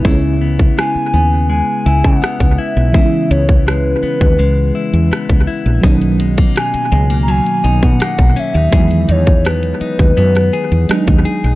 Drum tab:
HH |----------------|----------------|xxxxxxxxxxx-xxx-|xxxxxxxxxxx-xxx-|
SD |----r-------r---|----r-------r---|----r-------r---|----r----r--r---|
BD |o--o-------o-o--|o--o---o-----o--|o--o-------o-o--|o--o---o-----o--|